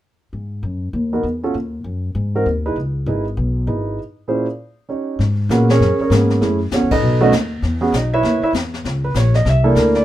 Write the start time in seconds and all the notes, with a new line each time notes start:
0.33 G#2
0.63 F#2
0.93 D#2
1.13 B3 D#4 F#4 A#4
1.23 E2
1.44 C#4 F4 F#4 A4
1.54 D#2
1.84 F#2
2.15 G#2
2.35 C4 D#4 F#4 A#4
2.46 D#2
2.66 D#4 E4 G#4 B4
2.76 C#2
3.06 G#1 D#4 E4 G#4 B4
3.37 B1
3.67 G#1 D#4 E4 G#4 B4
4.28 A#2 C#4 E4 G#4 C5
4.89 C#4 D#4 G4 C#5
5.19 G#2, brush sweep, snare
5.49 A#2 A#3 B3 C#4 F#4 G#4 B4, snare, hi-hat pedal
5.70 C#4 G#4 A#4 C#5, snare
5.80 F#2, brush sweep, snare
5.99 C#4 G#4 A#4 C#5, muted upright bass stroke
6.10 G#2 A#3 B3 C#4 G#4, snare, hi-hat pedal
6.30 snare
6.41 F#2 A3 C#4 E4 G#4, brush sweep, snare
6.71 E2 C#4 F#4 A4 C#5, snare, hi-hat pedal
6.82 C#2
6.91 A1 D#4 A4 B4 D#5, kick, ride
7.02 B1, brush sweep
7.21 A3 C#4 D#4 F#4 A4 B4 D#5
7.32 D#2, snare, hi-hat pedal
7.62 E2, brush sweep, snare
7.81 B3 C#4 F#4 G#4
7.92 B1 D#5, snare, hi-hat pedal
7.97 D#4
8.14 E4 B4 C#5 E5
8.23 D#2, brush sweep, snare
8.42 E4 B4 C#5 E5, muted upright bass stroke
8.53 E2, snare, hi-hat pedal
8.74 snare
8.84 C#2, brush sweep, snare
9.04 B4
9.14 A#1 C#5, snare, hi-hat pedal
9.34 D#5, snare
9.45 C2, brush sweep, snare
9.49 E5
9.64 A#3 D4 E4 G4 A4
9.75 D2 A#4, snare, hi-hat pedal
9.95 D5, snare